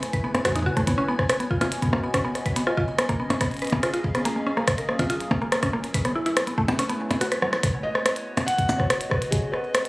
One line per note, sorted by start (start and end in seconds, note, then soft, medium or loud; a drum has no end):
0.00 0.87 A3 medium
0.00 0.87 E4 medium
0.00 1.55 B4 medium
0.00 3.24 C#5 medium
0.00 7.64 G#5 medium
0.00 cross-stick soft
0.00 closed hi-hat medium
0.13 0.20 B4 medium
0.13 kick loud
0.13 closed hi-hat soft
0.24 0.28 B3 medium
0.35 0.41 B3 medium
0.35 cross-stick medium
0.35 closed hi-hat soft
0.35 percussion blips medium
0.45 0.52 F#4 medium
0.45 kick medium
0.45 cross-stick loud
0.45 closed hi-hat medium
0.49 kick medium
0.52 0.63 D#4 medium
0.52 kick medium
0.56 kick medium
0.56 closed hi-hat soft
0.59 kick loud
0.63 0.76 F#4 loud
0.63 kick loud
0.77 0.84 A3 loud
0.77 kick loud
0.77 cross-stick soft
0.77 closed hi-hat soft
0.87 3.24 B3 medium
0.87 0.94 B3 medium
0.87 kick loud
0.87 cross-stick soft
0.87 closed hi-hat medium
0.97 1.02 C#4 loud
0.97 2.56 F#4 medium
1.08 1.13 B3 loud
1.16 4.93 D#5 medium
1.16 kick loud
1.16 cross-stick medium
1.29 1.36 B4 medium
1.29 cross-stick loud
1.29 closed hi-hat medium
1.40 1.47 B3 medium
1.40 closed hi-hat soft
1.51 1.58 F4 medium
1.51 kick loud
1.61 1.68 F4 loud
1.61 cross-stick medium
1.61 closed hi-hat medium
1.61 percussion blips medium
1.72 closed hi-hat medium
1.82 1.92 B3 medium
1.82 kick loud
1.82 closed hi-hat soft
1.88 kick medium
1.93 2.00 A#3 loud
1.93 kick medium
1.93 cross-stick medium
1.93 percussion blips medium
1.98 kick medium
2.03 2.10 B3 medium
2.14 2.18 C#4 loud
2.14 kick loud
2.14 cross-stick loud
2.14 closed hi-hat medium
2.25 2.29 B3 loud
2.35 cross-stick soft
2.35 closed hi-hat soft
2.46 2.53 B4 medium
2.46 kick loud
2.46 closed hi-hat soft
2.56 2.63 B3 medium
2.56 6.54 C#4 medium
2.56 closed hi-hat medium
2.67 2.74 F4 medium
2.67 cross-stick medium
2.72 6.62 G#4 medium
2.77 2.84 F4 loud
2.77 kick loud
2.99 3.09 B3 medium
2.99 cross-stick loud
2.99 closed hi-hat medium
3.06 3.16 A#3 medium
3.06 4.93 F5 medium
3.06 kick loud
3.06 cross-stick medium
3.06 closed hi-hat soft
3.20 3.27 B3 medium
3.30 3.34 C#4 loud
3.30 cross-stick medium
3.30 closed hi-hat soft
3.30 percussion blips medium
3.41 3.45 B3 loud
3.41 kick loud
3.41 cross-stick medium
3.41 closed hi-hat medium
3.51 closed hi-hat soft
3.54 closed hi-hat soft
3.57 closed hi-hat soft
3.59 closed hi-hat soft
3.62 3.69 B4 medium
3.62 closed hi-hat soft
3.65 closed hi-hat soft
3.67 closed hi-hat soft
3.70 3.79 B3 medium
3.70 kick loud
3.70 closed hi-hat soft
3.70 percussion blips medium
3.83 3.90 F4 medium
3.83 cross-stick loud
3.83 closed hi-hat medium
3.94 4.01 F4 medium
3.94 closed hi-hat soft
4.04 kick loud
4.15 4.25 B3 medium
4.15 cross-stick medium
4.15 closed hi-hat soft
4.25 5.94 F#3 medium
4.25 4.32 A#3 loud
4.25 closed hi-hat medium
4.36 4.43 A#3 medium
4.47 4.51 C#4 loud
4.57 4.61 A#3 loud
4.57 cross-stick medium
4.68 kick loud
4.68 cross-stick loud
4.68 closed hi-hat medium
4.78 4.85 A#4 medium
4.78 closed hi-hat soft
4.89 4.96 A#3 medium
4.89 cross-stick medium
4.99 5.06 F4 medium
4.99 kick loud
4.99 cross-stick medium
4.99 closed hi-hat medium
4.99 percussion blips loud
5.10 5.17 F4 loud
5.10 closed hi-hat medium
5.20 closed hi-hat soft
5.31 5.40 A#3 medium
5.31 kick loud
5.31 cross-stick medium
5.31 percussion blips medium
5.42 5.49 A#3 loud
5.52 5.59 A#3 medium
5.52 cross-stick loud
5.52 closed hi-hat medium
5.63 5.67 C#4 loud
5.63 kick loud
5.63 cross-stick medium
5.63 closed hi-hat soft
5.73 5.77 A#3 loud
5.84 closed hi-hat soft
5.94 7.63 A3 medium
5.94 6.01 B4 medium
5.94 kick loud
5.94 closed hi-hat medium
6.05 6.12 B3 medium
6.05 8.31 B4 medium
6.05 cross-stick medium
6.05 closed hi-hat soft
6.15 6.22 E4 medium
6.15 7.63 E4 medium
6.25 6.33 E4 loud
6.25 9.89 C#5 medium
6.25 closed hi-hat soft
6.37 cross-stick loud
6.37 closed hi-hat medium
6.47 6.57 B3 medium
6.47 closed hi-hat soft
6.58 6.65 A3 loud
6.58 kick loud
6.68 6.75 B3 medium
6.68 cross-stick medium
6.68 closed hi-hat medium
6.68 percussion blips loud
6.79 6.83 C#4 loud
6.79 cross-stick medium
6.79 closed hi-hat medium
6.89 6.94 B3 loud
6.89 closed hi-hat soft
7.11 7.17 B3 medium
7.11 closed hi-hat soft
7.11 percussion blips loud
7.21 7.28 F#4 medium
7.21 cross-stick medium
7.21 closed hi-hat medium
7.32 7.39 B4 medium
7.32 cross-stick medium
7.32 closed hi-hat medium
7.42 7.52 F#3 medium
7.42 cross-stick medium
7.53 cross-stick medium
7.53 closed hi-hat soft
7.63 9.84 B3 medium
7.63 kick loud
7.63 cross-stick medium
7.63 closed hi-hat medium
7.82 9.32 F#4 medium
7.82 8.49 D#5 loud
7.95 9.89 D#5 medium
7.95 cross-stick medium
8.06 cross-stick loud
8.06 closed hi-hat medium
8.16 closed hi-hat soft
8.37 cross-stick medium
8.37 closed hi-hat medium
8.37 percussion blips medium
8.46 8.80 F#5 loud
8.46 closed hi-hat medium
8.58 kick loud
8.58 closed hi-hat soft
8.69 percussion blips medium
8.69 cabasa medium
8.78 9.12 C#5 loud
8.78 kick loud
8.78 cross-stick medium
8.90 cross-stick loud
8.90 closed hi-hat medium
9.01 closed hi-hat medium
9.10 9.30 B4 medium
9.10 kick loud
9.10 cross-stick medium
9.22 closed hi-hat soft
9.31 9.89 C#4 medium
9.31 9.53 G#4 medium
9.31 kick loud
9.31 closed hi-hat medium
9.52 9.89 B4 loud
9.52 cross-stick medium
9.62 9.89 G#4 medium
9.68 9.89 F5 medium
9.75 cross-stick loud
9.75 closed hi-hat medium
9.85 closed hi-hat soft